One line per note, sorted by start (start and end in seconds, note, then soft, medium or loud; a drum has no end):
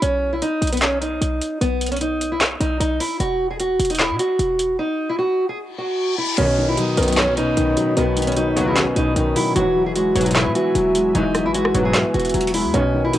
0.02 0.34 B1 loud
0.02 0.31 C#4 loud
0.02 closed hi-hat medium
0.33 0.41 A#1 loud
0.33 0.41 E4 medium
0.42 0.71 D#4 medium
0.42 closed hi-hat medium
0.62 1.19 B1 loud
0.62 closed hi-hat medium
0.67 closed hi-hat medium
0.72 0.81 B3 medium
0.72 closed hi-hat medium
0.77 closed hi-hat medium
0.82 0.99 C#4 medium
0.82 snare loud
0.82 clap medium
0.82 closed hi-hat medium
1.01 1.57 D#4 medium
1.01 closed hi-hat medium
1.21 1.40 B1 loud
1.21 closed hi-hat medium
1.41 closed hi-hat medium
1.61 2.56 B1 loud
1.61 1.90 B3 medium
1.61 closed hi-hat medium
1.81 closed hi-hat medium
1.86 closed hi-hat medium
1.91 2.00 C#4 medium
1.91 closed hi-hat medium
1.96 closed hi-hat soft
2.01 2.30 D#4 medium
2.01 closed hi-hat medium
2.21 closed hi-hat medium
2.32 2.40 E4 medium
2.41 snare loud
2.41 clap medium
2.41 closed hi-hat medium
2.60 2.80 B1 loud
2.60 2.78 D#4 medium
2.60 closed hi-hat medium
2.80 2.99 B1 loud
2.80 2.98 D#4 medium
2.80 closed hi-hat medium
3.00 3.18 E4 medium
3.00 open hi-hat medium
3.20 3.77 E1 loud
3.20 3.49 F#4 loud
3.20 closed hi-hat medium
3.51 3.59 G#4 medium
3.60 3.89 F#4 medium
3.60 closed hi-hat medium
3.80 4.12 E1 loud
3.80 closed hi-hat medium
3.85 closed hi-hat medium
3.90 3.99 D#4 medium
3.90 closed hi-hat medium
3.95 closed hi-hat medium
3.99 4.17 E4 medium
3.99 snare loud
3.99 clap medium
4.10 4.19 B2 loud
4.19 4.75 F#4 medium
4.19 closed hi-hat medium
4.39 4.77 E1 loud
4.39 closed hi-hat medium
4.59 closed hi-hat medium
4.79 5.08 D#4 loud
5.09 5.18 E4 medium
5.19 5.47 F#4 medium
5.49 5.57 G#4 medium
5.58 reverse cymbal medium
5.78 6.16 F#4 medium
6.18 6.36 E4 medium
6.38 6.47 B1 medium
6.38 6.70 B1 loud
6.38 6.47 F#2 medium
6.38 7.36 B2 medium
6.38 6.47 D#3 loud
6.38 6.66 C#4 loud
6.38 9.53 D#4 medium
6.38 9.53 C#5 medium
6.38 9.53 B5 medium
6.38 closed hi-hat medium
6.38 downlifter medium
6.58 7.56 D#3 medium
6.68 6.77 A#1 loud
6.68 6.77 E4 medium
6.78 7.76 F#3 medium
6.78 7.06 D#4 medium
6.78 closed hi-hat medium
6.97 7.55 B1 loud
6.97 7.26 B1 loud
6.97 7.26 F#2 loud
6.97 7.26 D#3 loud
6.97 7.97 B3 loud
6.97 closed hi-hat medium
7.03 closed hi-hat medium
7.08 7.16 B3 medium
7.08 closed hi-hat medium
7.13 closed hi-hat medium
7.17 8.17 C#4 medium
7.17 7.35 C#4 medium
7.17 snare loud
7.17 clap loud
7.17 closed hi-hat medium
7.37 7.95 B2 medium
7.37 7.93 D#4 medium
7.37 closed hi-hat medium
7.57 7.76 B1 loud
7.57 8.15 D#3 medium
7.57 closed hi-hat medium
7.77 8.35 F#3 medium
7.77 closed hi-hat medium
7.97 8.92 B1 loud
7.97 8.06 B1 medium
7.97 8.06 F#2 medium
7.97 8.95 B2 medium
7.97 8.06 D#3 medium
7.97 8.26 B3 loud
7.97 closed hi-hat medium
8.17 9.15 D#3 medium
8.17 closed hi-hat medium
8.22 closed hi-hat medium
8.27 8.35 C#4 medium
8.27 closed hi-hat medium
8.32 closed hi-hat soft
8.37 9.35 F#3 medium
8.37 8.65 D#4 medium
8.37 closed hi-hat medium
8.56 8.85 D#2 loud
8.56 8.85 C#3 medium
8.56 8.85 F#3 loud
8.56 9.56 B3 loud
8.56 closed hi-hat medium
8.67 8.75 E4 medium
8.76 9.56 C#4 medium
8.76 snare loud
8.76 clap medium
8.76 closed hi-hat medium
8.96 9.15 B1 loud
8.96 9.56 B2 medium
8.96 9.14 D#4 medium
8.96 closed hi-hat medium
9.16 9.35 B1 loud
9.16 9.56 D#3 medium
9.16 9.34 D#4 medium
9.16 closed hi-hat medium
9.36 9.56 F#3 medium
9.36 9.54 E4 medium
9.36 open hi-hat medium
9.56 10.13 E1 loud
9.56 9.65 B1 medium
9.56 9.65 G#2 medium
9.56 10.54 E3 medium
9.56 9.65 F#3 loud
9.56 9.84 F#4 loud
9.56 12.71 F#4 medium
9.56 12.70 E5 medium
9.56 12.70 G#5 medium
9.56 closed hi-hat medium
9.76 10.73 F#3 medium
9.86 9.95 G#4 medium
9.96 10.93 G#3 medium
9.96 10.24 F#4 medium
9.96 closed hi-hat medium
10.15 10.47 E1 loud
10.15 10.44 B1 loud
10.15 10.44 G#2 loud
10.15 10.44 F#3 loud
10.15 11.15 B3 loud
10.15 closed hi-hat medium
10.21 closed hi-hat medium
10.26 10.34 D#4 medium
10.26 closed hi-hat medium
10.31 closed hi-hat medium
10.35 10.53 E4 medium
10.35 11.35 E4 medium
10.35 snare loud
10.35 clap medium
10.35 closed hi-hat medium
10.46 10.55 B2 loud
10.55 11.13 E3 medium
10.55 11.11 F#4 medium
10.55 closed hi-hat medium
10.75 11.13 E1 loud
10.75 11.33 F#3 loud
10.75 closed hi-hat medium
10.95 11.53 G#3 medium
10.95 closed hi-hat medium
11.15 11.47 E1 loud
11.15 11.24 B1 medium
11.15 11.24 G#2 medium
11.15 12.13 E3 loud
11.15 11.24 F#3 loud
11.15 11.43 D#4 loud
11.15 closed hi-hat medium
11.35 12.32 F#3 medium
11.35 cross-stick medium
11.35 closed hi-hat medium
11.45 11.73 G#1 loud
11.45 11.54 E4 medium
11.54 12.53 G#3 medium
11.54 11.83 F#4 medium
11.54 closed hi-hat medium
11.65 cross-stick medium
11.74 11.93 E1 loud
11.74 12.03 B1 loud
11.74 12.03 G#2 loud
11.74 12.03 F#3 loud
11.74 12.74 B3 loud
11.74 closed hi-hat medium
11.85 11.93 G#4 medium
11.94 12.74 E4 medium
11.94 snare loud
11.94 clap loud
11.94 closed hi-hat medium
12.14 12.33 E1 loud
12.14 12.74 E3 medium
12.14 12.52 F#4 medium
12.14 closed hi-hat soft
12.20 closed hi-hat medium
12.25 closed hi-hat medium
12.29 closed hi-hat medium
12.34 12.66 E1 loud
12.34 12.74 F#3 medium
12.34 closed hi-hat medium
12.41 closed hi-hat medium
12.47 closed hi-hat medium
12.54 12.74 G#3 medium
12.54 12.72 E4 medium
12.54 open hi-hat medium
12.64 12.73 E2 loud
12.74 12.83 B1 medium
12.74 13.06 B1 loud
12.74 12.83 F#2 medium
12.74 13.18 B2 medium
12.74 12.83 D#3 loud
12.74 13.02 C#4 loud
12.74 13.18 D#4 medium
12.74 13.18 C#5 medium
12.74 13.18 B5 medium
12.74 closed hi-hat medium
12.94 13.18 D#3 medium
13.04 13.13 A#1 loud
13.04 13.13 E4 medium
13.13 13.18 F#3 medium
13.13 13.18 D#4 medium
13.13 closed hi-hat medium